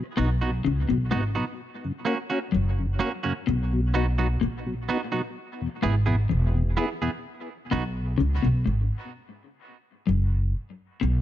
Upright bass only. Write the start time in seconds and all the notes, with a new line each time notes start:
0.19 B1
0.66 C#2
0.90 B1
1.13 G#1
2.54 F#1
3.49 B1
4.43 A#1
5.84 G#1
6.31 E1
7.73 B1
8.20 C#2
8.44 B1
8.67 G#1
10.09 F#1
11.03 B1